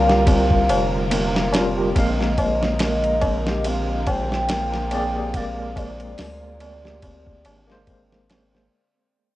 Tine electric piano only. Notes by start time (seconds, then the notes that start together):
Already playing: G3 F4 A#4
1.53 G3 F4 A#4
1.94 G#3 A#3
1.99 F5
4.92 A#3 G#4 D5
5.33 G#3 A#3
5.37 D5
7.67 G#3 A#3
7.72 C5